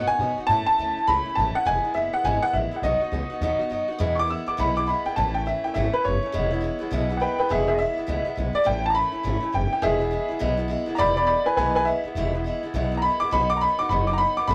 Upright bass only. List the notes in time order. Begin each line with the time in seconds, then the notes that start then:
0.08 muted upright bass stroke
0.19 B2
0.38 muted upright bass stroke
0.49 A2
0.67 muted upright bass stroke
0.78 D2
0.97 muted upright bass stroke
1.08 C#2
1.26 muted upright bass stroke
1.37 A1
1.55 muted upright bass stroke
1.66 E1
1.84 muted upright bass stroke
1.95 F#1
2.14 muted upright bass stroke
2.24 G#1
2.53 A1
2.71 muted upright bass stroke
2.82 B1
3.00 muted upright bass stroke
3.12 C#2
3.41 D#2
3.60 muted upright bass stroke
3.71 F#2
3.88 muted upright bass stroke
4.00 E2
4.47 muted upright bass stroke
4.58 B1
5.05 muted upright bass stroke
5.17 A1
5.65 muted upright bass stroke
5.75 G#1
6.05 F#1
6.24 muted upright bass stroke
6.34 E1
6.81 muted upright bass stroke
6.91 B1
7.39 muted upright bass stroke
7.50 E1
7.97 muted upright bass stroke
8.08 C#2
8.37 B1
8.56 muted upright bass stroke
8.67 A1
9.14 muted upright bass stroke
9.24 G#1
9.54 F#1
9.72 muted upright bass stroke
9.82 E1
10.30 muted upright bass stroke
10.41 B1
10.88 muted upright bass stroke
10.99 E1
11.46 muted upright bass stroke
11.57 B1
12.04 muted upright bass stroke
12.15 E1
12.63 muted upright bass stroke
12.74 B1
13.21 muted upright bass stroke
13.32 B1
13.79 muted upright bass stroke
13.89 F#1
14.37 muted upright bass stroke
14.48 A1